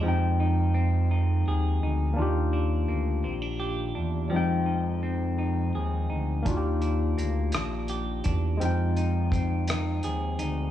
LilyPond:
<<
  \new Staff \with { instrumentName = "Tine electric piano" } { \time 6/8 \key f \dorian \tempo 4. = 56 <aes c' ees' g''>2. | <bes d' f' g'>2. | <g aes c' ees' g''>2. | <bes d' f' ges' g'>2. |
<aes c' ees' g''>2. | }
  \new Staff \with { instrumentName = "Clean electric guitar" } { \time 6/8 \key f \dorian f8 ees'8 c'8 ees'8 aes'8 ees'8 | ees8 d'8 bes8 c'16 d'16 g'8 d'8 | f8 ees'8 c'8 ees'8 aes'8 ees'8 | ees8 d'8 bes8 d'8 g'8 d'8 |
f8 ees'8 c'8 ees'8 aes'8 ees'8 | }
  \new Staff \with { instrumentName = "Analog synth bass" } { \clef bass \time 6/8 \key f \dorian f,2 ees,8 d,8 | ees,4 d,8 bes,,4 e,8 | f,2 ees,8 d,8 | ees,4 d,8 bes,,4 e,8 |
f,2 ees,8 d,8 | }
  \new DrumStaff \with { instrumentName = "Drums" } \drummode { \time 6/8 r4. r4. | r4. r4. | r4. r4. | <hh bd>8 hh8 hh8 <hh ss>8 hh8 <hh bd>8 |
hh8 hh8 <hh bd>8 <hh ss>8 hh8 hh8 | }
>>